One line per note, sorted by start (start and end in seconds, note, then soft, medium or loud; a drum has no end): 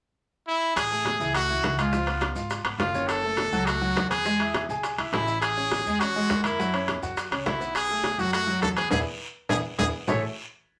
0.48 0.74 E4 medium
0.76 1.17 A1 medium
0.76 1.30 G#4 loud
0.76 high bongo medium
0.76 high conga soft
0.76 high timbale loud
0.76 long guiro medium
0.76 maracas medium
0.91 1.15 A3 medium
0.91 1.15 A4 medium
0.91 high bongo soft
0.91 high conga soft
0.91 maracas soft
1.05 high bongo medium
1.05 high conga medium
1.05 high timbale medium
1.05 short guiro medium
1.05 maracas soft
1.20 1.60 C#2 medium
1.20 1.32 E3 medium
1.20 1.32 E4 medium
1.20 high bongo soft
1.20 high conga soft
1.20 short guiro medium
1.20 maracas medium
1.34 1.46 A3 medium
1.34 1.76 F#4 loud
1.34 1.47 A4 medium
1.34 high bongo medium
1.34 high conga soft
1.34 high timbale medium
1.34 maracas medium
1.49 1.73 E3 medium
1.49 1.73 E4 medium
1.49 high bongo soft
1.49 high conga soft
1.49 maracas soft
1.63 2.31 C#2 loud
1.63 high bongo medium
1.63 low bongo medium
1.63 high timbale medium
1.63 short guiro medium
1.63 maracas soft
1.77 1.90 G#3 medium
1.77 2.33 F4 medium
1.77 1.91 G#4 medium
1.77 high conga medium
1.77 high timbale loud
1.77 short guiro medium
1.77 maracas medium
1.92 2.05 F3 medium
1.92 2.05 F4 medium
1.92 high bongo medium
1.92 long guiro medium
1.92 maracas medium
2.07 2.31 B3 medium
2.07 2.31 B4 medium
2.07 high bongo soft
2.07 high conga soft
2.07 high timbale medium
2.07 maracas soft
2.21 high bongo medium
2.21 high conga medium
2.21 high timbale loud
2.21 short guiro medium
2.21 maracas soft
2.35 2.63 G#1 medium
2.35 2.60 F4 medium
2.35 2.60 F5 medium
2.35 high conga soft
2.35 short guiro medium
2.35 maracas medium
2.50 high bongo medium
2.50 high conga soft
2.50 high timbale medium
2.50 long guiro medium
2.50 maracas medium
2.64 2.78 G#1 medium
2.64 2.77 B3 medium
2.64 2.78 B4 medium
2.64 high bongo soft
2.64 high conga soft
2.64 high timbale loud
2.64 maracas soft
2.78 3.47 F#1 loud
2.78 3.09 F4 medium
2.78 2.92 F4 medium
2.78 2.93 F5 medium
2.78 high bongo medium
2.78 low bongo medium
2.78 high conga medium
2.78 high timbale medium
2.78 low timbale medium
2.78 short guiro medium
2.78 maracas soft
2.94 3.19 C#4 medium
2.94 3.19 C#5 medium
2.94 high bongo soft
2.94 high conga medium
2.94 short guiro medium
2.94 maracas medium
3.08 3.67 A4 loud
3.08 high bongo medium
3.08 high conga soft
3.08 high timbale medium
3.08 long guiro medium
3.08 maracas medium
3.23 3.48 A3 medium
3.23 3.48 A4 medium
3.23 high bongo soft
3.23 high conga soft
3.23 maracas soft
3.37 high bongo medium
3.37 high conga loud
3.37 high timbale medium
3.37 short guiro medium
3.37 maracas soft
3.52 3.93 C#2 medium
3.52 3.65 F#3 medium
3.52 3.65 F#4 medium
3.52 high bongo soft
3.52 high conga soft
3.52 short guiro medium
3.52 maracas medium
3.66 3.79 A3 medium
3.66 4.10 F#4 loud
3.66 3.79 A4 medium
3.66 high bongo medium
3.66 high timbale medium
3.66 long guiro medium
3.66 maracas medium
3.81 4.05 F#3 medium
3.81 4.06 F#4 medium
3.81 high bongo soft
3.81 maracas soft
3.96 4.63 E2 medium
3.96 high bongo medium
3.96 low bongo medium
3.96 high conga soft
3.96 high timbale medium
3.96 low timbale medium
3.96 short guiro medium
3.96 maracas soft
4.10 4.22 B3 medium
4.10 4.65 G#4 loud
4.10 4.23 B4 medium
4.10 high conga medium
4.10 high timbale medium
4.10 short guiro medium
4.10 maracas medium
4.25 4.37 G#3 medium
4.25 4.37 G#4 medium
4.25 high bongo medium
4.25 high conga soft
4.25 long guiro medium
4.25 maracas medium
4.39 4.64 E4 medium
4.39 4.64 E5 medium
4.39 high bongo soft
4.39 high conga soft
4.39 high timbale medium
4.39 maracas soft
4.54 high bongo medium
4.54 high conga medium
4.54 high timbale medium
4.54 short guiro medium
4.54 maracas soft
4.69 4.96 B1 medium
4.69 4.94 G#4 medium
4.69 4.94 G#5 medium
4.69 high conga soft
4.69 short guiro medium
4.69 maracas medium
4.83 high bongo medium
4.83 high conga soft
4.83 high timbale medium
4.83 long guiro medium
4.83 maracas medium
4.98 5.12 B1 medium
4.98 5.11 E4 medium
4.98 5.11 E5 medium
4.98 high bongo soft
4.98 high conga soft
4.98 high timbale medium
4.98 maracas soft
5.12 5.80 A1 loud
5.12 5.40 E4 medium
5.12 5.25 G#4 medium
5.12 5.25 G#5 medium
5.12 high bongo medium
5.12 low bongo medium
5.12 high conga medium
5.12 high timbale medium
5.12 low timbale medium
5.12 short guiro medium
5.12 maracas soft
5.27 5.52 E4 medium
5.27 5.52 E5 medium
5.27 high bongo soft
5.27 short guiro medium
5.27 maracas medium
5.41 6.01 G#4 loud
5.41 high bongo medium
5.41 high conga soft
5.41 high timbale loud
5.41 long guiro medium
5.41 maracas medium
5.57 5.81 C#4 medium
5.57 5.81 C#5 medium
5.57 high bongo soft
5.57 high conga soft
5.57 maracas soft
5.71 high bongo medium
5.71 high conga medium
5.71 high timbale medium
5.71 short guiro medium
5.71 maracas soft
5.86 6.27 E2 medium
5.86 5.98 G#3 medium
5.86 5.99 G#4 medium
5.86 high bongo soft
5.86 high conga soft
5.86 short guiro medium
5.86 maracas medium
5.99 6.13 C#4 medium
5.99 6.44 F#4 loud
5.99 6.13 C#5 medium
5.99 high bongo medium
5.99 high conga soft
5.99 high timbale medium
5.99 long guiro medium
5.99 maracas medium
6.16 6.39 G#3 medium
6.16 6.40 G#4 medium
6.16 high bongo soft
6.16 high conga soft
6.16 maracas soft
6.30 6.97 F#2 loud
6.30 high bongo medium
6.30 low bongo medium
6.30 high conga soft
6.30 high timbale medium
6.30 low timbale medium
6.30 short guiro medium
6.30 maracas soft
6.44 6.56 A#3 medium
6.44 6.99 E4 medium
6.44 6.57 A#4 medium
6.44 high conga medium
6.44 high timbale medium
6.44 short guiro medium
6.44 maracas medium
6.59 6.71 F#3 medium
6.59 6.71 F#4 medium
6.59 high bongo medium
6.59 long guiro medium
6.59 maracas medium
6.74 6.98 C#4 medium
6.74 6.98 C#5 medium
6.74 high bongo soft
6.74 high conga soft
6.74 high timbale medium
6.74 maracas soft
6.88 high bongo medium
6.88 high conga medium
6.88 high timbale medium
6.88 short guiro medium
6.88 maracas soft
7.02 7.29 F#2 medium
7.02 7.27 F#4 medium
7.02 7.27 F#5 medium
7.02 high conga soft
7.02 short guiro medium
7.02 maracas medium
7.17 high bongo medium
7.17 high conga soft
7.17 high timbale medium
7.17 long guiro medium
7.17 maracas medium
7.31 7.45 C#2 medium
7.31 7.43 C#4 medium
7.31 7.44 C#5 medium
7.31 high bongo soft
7.31 high conga soft
7.31 high timbale loud
7.31 maracas soft
7.46 8.13 B1 medium
7.46 7.73 E4 medium
7.46 7.58 F#4 medium
7.46 7.58 F#5 medium
7.46 high bongo medium
7.46 low bongo medium
7.46 high conga medium
7.46 high timbale medium
7.46 short guiro medium
7.46 maracas soft
7.60 7.84 B3 medium
7.60 7.84 B4 medium
7.60 high bongo soft
7.60 short guiro medium
7.60 maracas medium
7.75 8.21 G#4 loud
7.75 high bongo medium
7.75 high conga soft
7.75 high timbale medium
7.75 long guiro medium
7.75 maracas medium
7.89 8.14 A3 medium
7.89 8.14 A4 medium
7.89 high bongo soft
7.89 high conga soft
7.89 maracas soft
8.04 high bongo medium
8.04 high conga medium
8.04 high timbale medium
8.04 short guiro medium
8.04 maracas soft
8.18 8.59 F#2 medium
8.18 8.31 F#3 medium
8.18 8.31 F#4 medium
8.18 8.32 F#4 medium
8.18 high bongo soft
8.18 high conga soft
8.18 short guiro medium
8.18 maracas medium
8.33 8.45 A3 medium
8.33 8.60 F#4 loud
8.33 high bongo medium
8.33 high conga soft
8.33 high timbale loud
8.33 long guiro medium
8.33 maracas medium
8.47 8.71 F#3 medium
8.47 8.72 F#4 medium
8.47 high bongo soft
8.47 high conga soft
8.47 maracas soft
8.62 8.89 E2 loud
8.62 8.69 A4 loud
8.62 high bongo medium
8.62 low bongo medium
8.62 high conga soft
8.62 high timbale medium
8.62 short guiro medium
8.62 maracas soft
8.76 8.89 B3 medium
8.76 8.90 G#4 loud
8.76 8.89 B4 medium
8.76 high conga medium
8.76 high timbale medium
8.76 short guiro medium
8.76 maracas medium
8.91 9.02 E2 medium
8.91 9.01 B3 medium
8.91 9.01 E4 medium
8.91 8.98 G#4 medium
8.91 9.01 G#4 loud
8.91 low bongo loud
8.91 low conga medium
8.91 high timbale loud
8.91 long guiro loud
8.91 maracas medium
9.49 9.60 E2 loud
9.49 9.59 B3 medium
9.49 9.59 E4 medium
9.49 9.59 G#4 medium
9.49 9.57 G#4 medium
9.49 low bongo medium
9.49 low conga loud
9.49 high timbale loud
9.49 long guiro medium
9.49 maracas medium
9.78 9.89 E2 loud
9.78 9.88 B3 medium
9.78 9.88 E4 medium
9.78 9.86 G#4 loud
9.78 9.88 G#4 medium
9.78 low bongo loud
9.78 low conga medium
9.78 high timbale loud
9.78 long guiro loud
9.78 maracas medium
10.07 10.21 A1 medium
10.07 10.21 A3 medium
10.07 10.21 E4 medium
10.07 10.21 G#4 medium
10.07 10.21 A4 medium
10.07 10.21 C#5 medium
10.07 10.22 E5 loud
10.07 low bongo loud
10.07 low conga medium
10.07 low timbale loud
10.07 long guiro loud
10.07 maracas medium